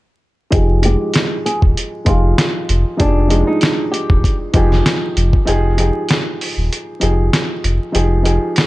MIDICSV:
0, 0, Header, 1, 5, 480
1, 0, Start_track
1, 0, Key_signature, -4, "minor"
1, 0, Tempo, 618557
1, 408, Time_signature, 4, 2, 24, 8
1, 6726, End_track
2, 0, Start_track
2, 0, Title_t, "Nylon-string guitar"
2, 0, Program_c, 0, 24
2, 664, Note_on_c, 0, 67, 83
2, 873, Note_off_c, 0, 67, 0
2, 1130, Note_on_c, 0, 68, 72
2, 1247, Note_off_c, 0, 68, 0
2, 1603, Note_on_c, 0, 65, 80
2, 1953, Note_off_c, 0, 65, 0
2, 2334, Note_on_c, 0, 62, 111
2, 2680, Note_off_c, 0, 62, 0
2, 2694, Note_on_c, 0, 63, 74
2, 3025, Note_off_c, 0, 63, 0
2, 3038, Note_on_c, 0, 67, 78
2, 3391, Note_off_c, 0, 67, 0
2, 6726, End_track
3, 0, Start_track
3, 0, Title_t, "Upright piano"
3, 0, Program_c, 1, 0
3, 392, Note_on_c, 1, 53, 89
3, 399, Note_on_c, 1, 63, 82
3, 408, Note_on_c, 1, 67, 83
3, 415, Note_on_c, 1, 68, 100
3, 574, Control_c, 1, 64, 127
3, 591, Note_off_c, 1, 53, 0
3, 595, Note_off_c, 1, 63, 0
3, 599, Note_off_c, 1, 67, 0
3, 603, Note_off_c, 1, 68, 0
3, 638, Note_on_c, 1, 53, 65
3, 645, Note_on_c, 1, 63, 60
3, 653, Note_on_c, 1, 67, 66
3, 660, Note_on_c, 1, 56, 79
3, 1390, Note_off_c, 1, 53, 0
3, 1393, Note_off_c, 1, 63, 0
3, 1397, Note_off_c, 1, 67, 0
3, 1401, Note_off_c, 1, 56, 0
3, 1590, Note_on_c, 1, 53, 68
3, 1598, Note_on_c, 1, 63, 62
3, 1606, Note_on_c, 1, 67, 63
3, 1613, Note_on_c, 1, 68, 74
3, 2164, Note_off_c, 1, 53, 0
3, 2168, Note_off_c, 1, 63, 0
3, 2172, Note_off_c, 1, 67, 0
3, 2176, Note_off_c, 1, 68, 0
3, 2306, Note_on_c, 1, 53, 80
3, 2313, Note_on_c, 1, 63, 65
3, 2321, Note_on_c, 1, 67, 73
3, 2329, Note_on_c, 1, 68, 83
3, 2508, Note_off_c, 1, 53, 0
3, 2512, Note_off_c, 1, 63, 0
3, 2515, Note_off_c, 1, 67, 0
3, 2519, Note_off_c, 1, 68, 0
3, 2543, Note_on_c, 1, 53, 74
3, 2551, Note_on_c, 1, 63, 69
3, 2559, Note_on_c, 1, 67, 65
3, 2567, Note_on_c, 1, 56, 80
3, 3302, Note_off_c, 1, 53, 0
3, 3306, Note_off_c, 1, 63, 0
3, 3310, Note_off_c, 1, 67, 0
3, 3314, Note_off_c, 1, 56, 0
3, 3517, Note_on_c, 1, 53, 88
3, 3526, Note_on_c, 1, 63, 76
3, 3533, Note_on_c, 1, 67, 81
3, 3541, Note_on_c, 1, 68, 84
3, 4088, Note_off_c, 1, 53, 0
3, 4092, Note_off_c, 1, 63, 0
3, 4096, Note_off_c, 1, 67, 0
3, 4100, Note_off_c, 1, 68, 0
3, 4232, Note_on_c, 1, 53, 89
3, 4240, Note_on_c, 1, 63, 87
3, 4248, Note_on_c, 1, 67, 83
3, 4255, Note_on_c, 1, 68, 105
3, 4257, Control_c, 1, 64, 0
3, 4399, Control_c, 1, 64, 127
3, 4431, Note_off_c, 1, 53, 0
3, 4435, Note_off_c, 1, 63, 0
3, 4439, Note_off_c, 1, 67, 0
3, 4442, Note_off_c, 1, 68, 0
3, 4478, Note_on_c, 1, 53, 70
3, 4485, Note_on_c, 1, 63, 65
3, 4493, Note_on_c, 1, 67, 68
3, 4501, Note_on_c, 1, 68, 80
3, 5230, Note_off_c, 1, 53, 0
3, 5233, Note_off_c, 1, 63, 0
3, 5237, Note_off_c, 1, 67, 0
3, 5241, Note_off_c, 1, 68, 0
3, 5430, Note_on_c, 1, 53, 70
3, 5438, Note_on_c, 1, 63, 61
3, 5445, Note_on_c, 1, 67, 64
3, 5453, Note_on_c, 1, 68, 77
3, 6004, Note_off_c, 1, 53, 0
3, 6008, Note_off_c, 1, 63, 0
3, 6012, Note_off_c, 1, 67, 0
3, 6016, Note_off_c, 1, 68, 0
3, 6148, Note_on_c, 1, 53, 80
3, 6155, Note_on_c, 1, 63, 68
3, 6163, Note_on_c, 1, 67, 74
3, 6171, Note_on_c, 1, 68, 86
3, 6349, Note_off_c, 1, 53, 0
3, 6353, Note_off_c, 1, 63, 0
3, 6357, Note_off_c, 1, 67, 0
3, 6361, Note_off_c, 1, 68, 0
3, 6383, Note_on_c, 1, 53, 72
3, 6392, Note_on_c, 1, 63, 69
3, 6400, Note_on_c, 1, 67, 67
3, 6408, Note_on_c, 1, 68, 83
3, 6726, Note_off_c, 1, 53, 0
3, 6726, Note_off_c, 1, 63, 0
3, 6726, Note_off_c, 1, 67, 0
3, 6726, Note_off_c, 1, 68, 0
3, 6726, End_track
4, 0, Start_track
4, 0, Title_t, "Sub bass"
4, 0, Program_c, 2, 38
4, 408, Note_on_c, 2, 29, 99
4, 748, Note_off_c, 2, 29, 0
4, 1259, Note_on_c, 2, 27, 86
4, 1358, Note_off_c, 2, 27, 0
4, 1602, Note_on_c, 2, 29, 96
4, 1822, Note_off_c, 2, 29, 0
4, 2089, Note_on_c, 2, 29, 91
4, 2206, Note_off_c, 2, 29, 0
4, 2329, Note_on_c, 2, 29, 106
4, 2668, Note_off_c, 2, 29, 0
4, 3180, Note_on_c, 2, 27, 86
4, 3279, Note_off_c, 2, 27, 0
4, 3523, Note_on_c, 2, 29, 93
4, 3742, Note_off_c, 2, 29, 0
4, 4009, Note_on_c, 2, 29, 92
4, 4126, Note_off_c, 2, 29, 0
4, 4249, Note_on_c, 2, 29, 102
4, 4588, Note_off_c, 2, 29, 0
4, 5099, Note_on_c, 2, 27, 82
4, 5198, Note_off_c, 2, 27, 0
4, 5449, Note_on_c, 2, 29, 96
4, 5666, Note_off_c, 2, 29, 0
4, 5929, Note_on_c, 2, 29, 91
4, 6046, Note_off_c, 2, 29, 0
4, 6169, Note_on_c, 2, 29, 107
4, 6508, Note_off_c, 2, 29, 0
4, 6726, End_track
5, 0, Start_track
5, 0, Title_t, "Drums"
5, 405, Note_on_c, 9, 42, 85
5, 408, Note_on_c, 9, 36, 108
5, 483, Note_off_c, 9, 42, 0
5, 486, Note_off_c, 9, 36, 0
5, 644, Note_on_c, 9, 42, 68
5, 722, Note_off_c, 9, 42, 0
5, 881, Note_on_c, 9, 42, 82
5, 897, Note_on_c, 9, 38, 106
5, 959, Note_off_c, 9, 42, 0
5, 974, Note_off_c, 9, 38, 0
5, 1135, Note_on_c, 9, 42, 67
5, 1212, Note_off_c, 9, 42, 0
5, 1259, Note_on_c, 9, 36, 96
5, 1337, Note_off_c, 9, 36, 0
5, 1377, Note_on_c, 9, 42, 85
5, 1454, Note_off_c, 9, 42, 0
5, 1599, Note_on_c, 9, 42, 75
5, 1602, Note_on_c, 9, 36, 93
5, 1677, Note_off_c, 9, 42, 0
5, 1680, Note_off_c, 9, 36, 0
5, 1849, Note_on_c, 9, 38, 120
5, 1851, Note_on_c, 9, 42, 90
5, 1926, Note_off_c, 9, 38, 0
5, 1928, Note_off_c, 9, 42, 0
5, 2088, Note_on_c, 9, 42, 65
5, 2166, Note_off_c, 9, 42, 0
5, 2325, Note_on_c, 9, 42, 87
5, 2329, Note_on_c, 9, 36, 108
5, 2403, Note_off_c, 9, 42, 0
5, 2406, Note_off_c, 9, 36, 0
5, 2564, Note_on_c, 9, 42, 69
5, 2642, Note_off_c, 9, 42, 0
5, 2801, Note_on_c, 9, 42, 77
5, 2817, Note_on_c, 9, 38, 110
5, 2879, Note_off_c, 9, 42, 0
5, 2895, Note_off_c, 9, 38, 0
5, 3055, Note_on_c, 9, 42, 66
5, 3133, Note_off_c, 9, 42, 0
5, 3180, Note_on_c, 9, 36, 99
5, 3258, Note_off_c, 9, 36, 0
5, 3291, Note_on_c, 9, 36, 98
5, 3297, Note_on_c, 9, 42, 87
5, 3369, Note_off_c, 9, 36, 0
5, 3375, Note_off_c, 9, 42, 0
5, 3520, Note_on_c, 9, 42, 76
5, 3523, Note_on_c, 9, 36, 99
5, 3598, Note_off_c, 9, 42, 0
5, 3601, Note_off_c, 9, 36, 0
5, 3663, Note_on_c, 9, 38, 36
5, 3741, Note_off_c, 9, 38, 0
5, 3770, Note_on_c, 9, 38, 116
5, 3772, Note_on_c, 9, 42, 91
5, 3848, Note_off_c, 9, 38, 0
5, 3850, Note_off_c, 9, 42, 0
5, 4010, Note_on_c, 9, 42, 66
5, 4088, Note_off_c, 9, 42, 0
5, 4138, Note_on_c, 9, 36, 91
5, 4216, Note_off_c, 9, 36, 0
5, 4247, Note_on_c, 9, 42, 91
5, 4325, Note_off_c, 9, 42, 0
5, 4486, Note_on_c, 9, 42, 74
5, 4563, Note_off_c, 9, 42, 0
5, 4723, Note_on_c, 9, 42, 83
5, 4738, Note_on_c, 9, 38, 109
5, 4800, Note_off_c, 9, 42, 0
5, 4816, Note_off_c, 9, 38, 0
5, 4976, Note_on_c, 9, 46, 50
5, 5054, Note_off_c, 9, 46, 0
5, 5219, Note_on_c, 9, 42, 89
5, 5296, Note_off_c, 9, 42, 0
5, 5441, Note_on_c, 9, 42, 80
5, 5518, Note_off_c, 9, 42, 0
5, 5691, Note_on_c, 9, 38, 124
5, 5693, Note_on_c, 9, 42, 92
5, 5769, Note_off_c, 9, 38, 0
5, 5770, Note_off_c, 9, 42, 0
5, 5931, Note_on_c, 9, 42, 69
5, 6008, Note_off_c, 9, 42, 0
5, 6167, Note_on_c, 9, 42, 90
5, 6245, Note_off_c, 9, 42, 0
5, 6406, Note_on_c, 9, 42, 71
5, 6483, Note_off_c, 9, 42, 0
5, 6642, Note_on_c, 9, 42, 80
5, 6658, Note_on_c, 9, 38, 112
5, 6720, Note_off_c, 9, 42, 0
5, 6726, Note_off_c, 9, 38, 0
5, 6726, End_track
0, 0, End_of_file